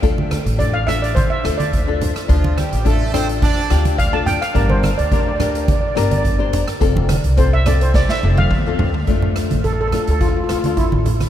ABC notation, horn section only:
X:1
M:4/4
L:1/16
Q:1/4=106
K:Dm
V:1 name="Horn section"
z16 | [F,F]2 [G,G]2 [A,A]2 [Cc]2 [Dd]3 z4 z | z16 | z16 |
z16 |]